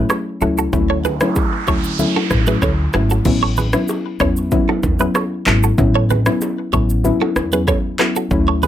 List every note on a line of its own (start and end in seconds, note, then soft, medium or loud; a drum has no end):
0.00 0.16 F#3 medium
0.00 0.16 A3 medium
0.00 0.17 C#4 medium
0.00 0.17 E4 medium
0.10 0.19 A4 medium
0.10 0.19 C#5 medium
0.10 cross-stick medium
0.10 high bongo medium
0.10 shaker medium
0.41 0.65 C#2 medium
0.41 0.64 F#3 medium
0.41 0.64 A3 medium
0.41 0.64 C#4 medium
0.41 0.64 E4 medium
0.41 0.51 F#4 medium
0.41 0.50 A4 medium
0.41 shaker soft
0.58 0.67 F#4 medium
0.58 0.66 A4 medium
0.58 shaker medium
0.73 1.20 D2 loud
0.73 0.95 F#3 medium
0.73 0.95 A3 medium
0.73 0.95 C#4 medium
0.73 0.96 E4 loud
0.73 kick loud
0.73 noise sweep medium
0.73 low conga medium
0.73 shaker medium
0.90 0.98 A4 medium
0.90 0.98 C#5 medium
1.05 1.14 G#4 medium
1.05 1.13 B4 medium
1.05 low bongo medium
1.05 low conga medium
1.05 shaker medium
1.21 1.43 F#3 medium
1.21 1.43 A3 medium
1.21 1.43 C#4 medium
1.21 1.43 E4 medium
1.21 cross-stick loud
1.21 low bongo medium
1.21 shaker medium
1.36 kick loud
1.36 high bongo medium
1.36 shaker medium
1.67 2.04 D2 medium
1.67 1.90 F#3 medium
1.67 1.90 A3 medium
1.67 1.90 C#4 medium
1.67 1.90 E4 medium
1.67 1.77 A4 medium
1.67 1.77 C#5 medium
1.67 kick medium
1.67 shaker medium
1.84 shaker medium
1.99 2.43 F#3 medium
1.99 2.43 A3 medium
1.99 2.43 C#4 medium
1.99 2.43 E4 loud
1.99 low conga medium
1.99 shaker medium
2.16 2.25 F#4 medium
2.16 2.24 A4 medium
2.16 low bongo medium
2.31 2.54 A1 medium
2.31 kick medium
2.31 cross-stick medium
2.31 high bongo medium
2.31 low bongo medium
2.31 shaker medium
2.47 2.69 F#3 medium
2.47 2.69 A3 medium
2.47 2.69 C#4 medium
2.47 2.69 E4 medium
2.47 2.56 G#4 medium
2.47 2.56 B4 medium
2.47 shaker medium
2.62 2.86 D2 medium
2.62 2.72 A4 medium
2.62 2.71 C#5 medium
2.62 kick medium
2.62 cross-stick medium
2.62 high bongo medium
2.62 shaker medium
2.93 3.18 G#1 medium
2.93 3.16 F#3 medium
2.93 3.16 A3 medium
2.93 3.16 C#4 medium
2.93 3.17 E4 medium
2.93 3.04 F#4 medium
2.93 3.03 A4 medium
2.93 cross-stick loud
2.93 shaker soft
3.10 3.19 F#4 medium
3.10 3.19 A4 medium
3.10 shaker medium
3.25 3.73 A1 loud
3.25 3.70 F#3 medium
3.25 3.70 B3 medium
3.25 3.70 C#4 medium
3.25 3.70 E4 loud
3.25 kick loud
3.25 crash medium
3.25 low conga medium
3.25 shaker medium
3.43 3.51 A4 medium
3.43 3.50 C#5 medium
3.57 3.67 G#4 medium
3.57 3.66 B4 medium
3.57 low conga medium
3.57 shaker medium
3.73 3.95 F#3 medium
3.73 3.95 B3 medium
3.73 3.95 C#4 medium
3.73 3.95 E4 medium
3.73 cross-stick loud
3.73 low bongo medium
3.73 shaker medium
3.88 high bongo medium
3.88 shaker medium
4.20 4.56 E2 loud
4.20 4.43 F#3 medium
4.20 4.43 B3 medium
4.20 4.43 C#4 medium
4.20 4.43 E4 medium
4.20 4.30 A4 medium
4.20 4.30 C#5 medium
4.20 kick medium
4.20 cross-stick loud
4.20 shaker medium
4.37 shaker medium
4.51 4.74 F#3 medium
4.51 4.74 B3 medium
4.51 4.74 C#4 medium
4.51 4.75 E4 loud
4.51 kick loud
4.51 low conga medium
4.51 shaker medium
4.69 4.77 F#4 medium
4.69 4.77 A4 medium
4.69 low bongo medium
4.83 5.07 E2 loud
4.83 kick loud
4.83 low bongo medium
4.83 shaker medium
4.99 5.21 F#3 medium
4.99 5.21 B3 medium
4.99 5.22 C#4 medium
4.99 5.22 E4 medium
4.99 5.09 G#4 medium
4.99 5.08 B4 medium
4.99 shaker medium
5.15 5.25 A4 medium
5.15 5.24 C#5 medium
5.15 cross-stick medium
5.15 high bongo medium
5.15 shaker medium
5.46 5.70 G#1 medium
5.46 5.69 F#3 medium
5.46 5.69 B3 medium
5.46 5.69 C#4 medium
5.46 5.69 E4 medium
5.46 5.56 F#4 medium
5.46 5.56 A4 medium
5.46 clap loud
5.46 shaker medium
5.63 5.72 F#4 medium
5.63 5.72 A4 medium
5.63 shaker medium
5.78 6.26 A1 loud
5.78 6.00 F#3 loud
5.78 6.01 B3 medium
5.78 6.01 C#4 medium
5.78 6.01 E4 loud
5.78 kick loud
5.78 low conga medium
5.78 shaker medium
5.95 6.04 A4 medium
5.95 6.03 C#5 medium
6.10 6.19 G#4 medium
6.10 6.19 B4 medium
6.10 low conga medium
6.10 shaker medium
6.26 6.48 F#3 medium
6.26 6.48 B3 medium
6.26 6.48 C#4 medium
6.26 6.48 E4 medium
6.26 cross-stick loud
6.26 low bongo medium
6.26 shaker medium
6.41 high bongo medium
6.41 shaker medium
6.73 7.09 A1 medium
6.73 6.95 F#3 medium
6.73 6.95 B3 medium
6.73 6.96 C#4 medium
6.73 6.96 E4 medium
6.73 6.83 A4 medium
6.73 6.82 C#5 medium
6.73 kick medium
6.73 shaker medium
6.90 shaker medium
7.04 7.48 F#3 loud
7.04 7.49 B3 medium
7.04 7.49 C#4 medium
7.04 7.49 E4 loud
7.04 low conga medium
7.04 shaker medium
7.21 7.30 F#4 medium
7.21 7.29 A4 medium
7.21 low bongo medium
7.36 7.72 E2 medium
7.36 cross-stick medium
7.36 low bongo medium
7.36 shaker medium
7.52 7.74 F#3 medium
7.52 7.74 B3 medium
7.52 7.74 C#4 medium
7.52 7.74 E4 medium
7.52 7.62 G#4 medium
7.52 7.61 B4 medium
7.52 shaker medium
7.68 7.77 A4 medium
7.68 7.77 C#5 medium
7.68 kick loud
7.68 cross-stick medium
7.68 high bongo medium
7.68 shaker medium
7.99 8.22 F#3 medium
7.99 8.22 B3 medium
7.99 8.22 C#4 medium
7.99 8.22 E4 medium
7.99 8.09 F#4 medium
7.99 8.08 A4 medium
7.99 cross-stick loud
7.99 clap loud
7.99 shaker medium
8.16 8.25 F#4 medium
8.16 8.24 A4 medium
8.16 shaker medium
8.31 8.68 D2 loud
8.31 8.68 F#3 loud
8.31 8.68 A3 medium
8.31 8.68 C#4 medium
8.31 8.68 E4 loud
8.31 kick loud
8.31 low conga medium
8.31 shaker medium
8.48 8.56 A4 medium
8.48 8.56 C#5 medium
8.63 8.68 G#4 medium
8.63 8.68 B4 medium
8.63 low conga medium
8.63 shaker medium